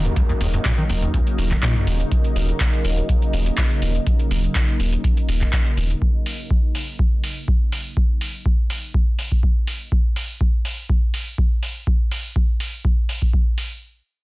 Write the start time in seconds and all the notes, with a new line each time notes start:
Already playing: C#3 F#3 A#3 D#4, downlifter
0.05 D#2, closed hi-hat
0.16 C#2, kick, closed hi-hat
0.29 D#2, closed hi-hat
0.41 D#1 D#2, open hi-hat
0.54 F#2, closed hi-hat
0.65 A#2, kick, clap, closed hi-hat
0.78 D#3, closed hi-hat
0.90 D#1 D#2, open hi-hat
1.02 D#2, closed hi-hat
1.14 C#2, kick, closed hi-hat
1.27 closed hi-hat
1.38 D#1, open hi-hat
1.51 D#3, kick, clap, closed hi-hat
1.63 A#2, kick, clap, closed hi-hat
1.76 F#2, closed hi-hat
1.87 D#1 D#2, open hi-hat
2.00 closed hi-hat
2.12 kick, closed hi-hat
2.24 closed hi-hat
2.36 D#1, open hi-hat
2.49 closed hi-hat
2.60 kick, clap, closed hi-hat
2.73 closed hi-hat
2.85 D#1, open hi-hat
2.98 closed hi-hat
3.09 kick, closed hi-hat
3.22 closed hi-hat
3.33 D#1, open hi-hat
3.46 closed hi-hat
3.58 kick, clap, closed hi-hat
3.71 closed hi-hat
3.82 D#1, open hi-hat
3.95 closed hi-hat
4.07 kick, closed hi-hat
4.20 closed hi-hat
4.31 D#1, open hi-hat
4.44 closed hi-hat
4.55 kick, clap, closed hi-hat
4.68 closed hi-hat
4.80 D#1, open hi-hat
4.93 closed hi-hat
5.04 kick, closed hi-hat
5.17 closed hi-hat
5.29 D#1, open hi-hat
5.41 kick, clap, closed hi-hat
5.53 kick, clap, closed hi-hat
5.66 closed hi-hat
5.77 D#1, open hi-hat
5.90 closed hi-hat
6.02 kick
6.26 open hi-hat
6.51 kick
6.75 open hi-hat
6.99 kick
7.24 open hi-hat
7.48 kick
7.72 open hi-hat
7.97 kick
8.21 open hi-hat
8.46 kick
8.70 open hi-hat
8.94 kick
9.19 open hi-hat
9.32 kick
9.43 kick
9.67 open hi-hat
9.92 kick
10.16 open hi-hat
10.41 kick
10.65 open hi-hat
10.89 kick
11.14 open hi-hat
11.38 kick
11.63 open hi-hat
11.87 kick
12.11 open hi-hat
12.36 kick
12.60 open hi-hat
12.85 kick
13.09 open hi-hat
13.22 kick
13.33 kick
13.58 open hi-hat